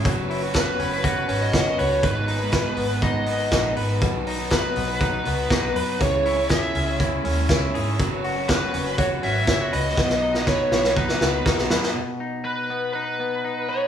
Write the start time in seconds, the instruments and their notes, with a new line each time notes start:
Already playing: analog synth pad C#5 C#6
0.04 fingered electric bass F#1, overdriven electric guitar F#3 C#4 F#4 B4, clean electric guitar F#3, analog synth pad B4 F#5, kick, closed hi-hat
0.30 clean electric guitar E4, open hi-hat
0.42 overdriven electric guitar C#4 F#4 B4, clean electric guitar F#4
0.54 clean electric guitar B4, lead electric guitar B4, kick, snare, closed hi-hat
0.79 fingered electric bass F#1, clean electric guitar C#4, open hi-hat
0.91 overdriven electric guitar C#4 F#4 B4
1.04 clean electric guitar F#4, lead electric guitar B4, kick, closed hi-hat
1.28 fingered electric bass G#1, overdriven electric guitar F#3 C#4 F#4 B4, clean electric guitar C#4, open hi-hat
1.41 lead electric guitar D#5
1.53 fingered electric bass F#1, overdriven electric guitar F#3 C#4 F#4 B4, clean electric guitar F#4, kick, snare, closed hi-hat
1.78 fingered electric bass C#2, overdriven electric guitar F#3 C#4 F#4 B4, clean electric guitar B4, lead electric guitar C#5, open hi-hat
2.03 fingered electric bass G#1, overdriven electric guitar G#2 D#3 G#3 B3 D#4 B4, clean electric guitar G#2, lead electric guitar B4, analog synth pad D#5 G#5 D#6, kick, closed hi-hat
2.27 clean electric guitar D#4, open hi-hat
2.40 overdriven electric guitar G#3 B3 D#4 B4
2.52 clean electric guitar B4, kick, snare, closed hi-hat
2.77 fingered electric bass G#1, clean electric guitar B3, open hi-hat
2.89 overdriven electric guitar G#3 B3 D#4 B4
3.02 clean electric guitar D#4, lead electric guitar D#5, kick, closed hi-hat
3.26 overdriven electric guitar G#3 B3 D#4 B4, clean electric guitar B3, open hi-hat
3.50 fingered electric bass A#1, overdriven electric guitar G#3 B3 D#4 B4, clean electric guitar D#4, kick, snare, closed hi-hat
3.75 fingered electric bass G#1, overdriven electric guitar G#3 B3 D#4 B4, clean electric guitar B4, open hi-hat
4.00 fingered electric bass B1, overdriven electric guitar B2 D#3 F#3 B3 D#4 B4, clean electric guitar B2, analog synth pad F#5 D#6, kick, closed hi-hat
4.27 clean electric guitar D#4, open hi-hat
4.38 overdriven electric guitar F#3 B3 D#4 B4
4.50 lead electric guitar B4, clean electric guitar B4, kick, snare, closed hi-hat
4.76 fingered electric bass B1, clean electric guitar B3, open hi-hat
4.88 overdriven electric guitar F#3 B3 D#4 B4
5.01 clean electric guitar D#4, lead electric guitar B4, kick, closed hi-hat
5.24 fingered electric bass C#2, overdriven electric guitar F#3 B3 D#4 B4, clean electric guitar B3, open hi-hat
5.49 fingered electric bass B1, overdriven electric guitar F#3 B3 D#4 B4, clean electric guitar D#4, kick, snare, closed hi-hat
5.74 fingered electric bass F#2, overdriven electric guitar F#3 B3 D#4 B4, clean electric guitar B4, open hi-hat
5.99 fingered electric bass C#2, overdriven electric guitar C#3 G#3 C#4 E4 G#4, clean electric guitar C#3, analog synth pad G#4 C#5 E5 C#6, lead electric guitar C#5, kick, closed hi-hat
6.26 clean electric guitar E4, open hi-hat
6.36 overdriven electric guitar C#4 E4 G#4
6.49 clean electric guitar G#4, lead electric guitar E5, kick, snare, closed hi-hat
6.75 fingered electric bass C#2, clean electric guitar C#4, open hi-hat
6.86 overdriven electric guitar C#4 E4 G#4
7.00 clean electric guitar E4, kick, closed hi-hat
7.23 fingered electric bass D#2, overdriven electric guitar G#3 C#4 E4 G#4, clean electric guitar C#4, open hi-hat
7.48 fingered electric bass C#2, overdriven electric guitar G#3 C#4 E4 G#4, clean electric guitar E4, kick, snare, closed hi-hat
7.74 fingered electric bass G#2, overdriven electric guitar G#3 C#4 E4 G#4, clean electric guitar G#4, open hi-hat
7.98 fingered electric bass F#1, overdriven electric guitar F#3 C#4 F#4 B4, clean electric guitar F#3, analog synth pad B4 F#5, kick, closed hi-hat
8.24 clean electric guitar F#4, open hi-hat
8.36 overdriven electric guitar C#4 F#4 B4
8.48 clean electric guitar B4, lead electric guitar B4, kick, snare, closed hi-hat
8.73 fingered electric bass F#1, clean electric guitar C#4, open hi-hat
8.85 overdriven electric guitar C#4 F#4 B4
8.98 clean electric guitar F#4, lead electric guitar C#5, kick, closed hi-hat
9.22 fingered electric bass G#1, overdriven electric guitar F#3 C#4 F#4 B4, clean electric guitar C#4, lead electric guitar E5, open hi-hat
9.47 fingered electric bass F#1, overdriven electric guitar F#3 C#4 F#4 B4, clean electric guitar E4, kick, snare, closed hi-hat
9.61 clean electric guitar F#4
9.72 fingered electric bass C#2, overdriven electric guitar F#3 C#4 F#4 B4, clean electric guitar B4, lead electric guitar D#5, open hi-hat
9.97 fingered electric bass B1, overdriven electric guitar B2 D#3 F#3 B3 D#4 B4, clean electric guitar B2, analog synth pad D#5 F#5 D#6, kick, snare
10.10 snare
10.22 clean electric guitar D#4
10.34 overdriven electric guitar F#3 B3 D#4 B4, snare
10.47 clean electric guitar B4, lead electric guitar C#5, kick, snare
10.72 fingered electric bass B1, clean electric guitar B3, snare
10.83 overdriven electric guitar F#3 B3 D#4 B4, snare
10.97 clean electric guitar D#4, lead electric guitar B4, kick
11.09 snare
11.21 fingered electric bass C#2, overdriven electric guitar F#3 B3 D#4 B4, clean electric guitar B3, snare
11.46 fingered electric bass B1, overdriven electric guitar F#3 B3 D#4 B4, clean electric guitar D#4, kick, snare
11.58 snare
11.70 fingered electric bass F#2, overdriven electric guitar F#3 B3 D#4 B4, clean electric guitar B4, snare
11.83 snare
11.95 clean electric guitar B2
12.20 clean electric guitar D#4
12.44 lead electric guitar B4, clean electric guitar B4
12.70 clean electric guitar B3
12.93 clean electric guitar D#4, lead electric guitar B4
13.20 clean electric guitar B3
13.44 clean electric guitar D#4
13.69 clean electric guitar B4, lead electric guitar C#5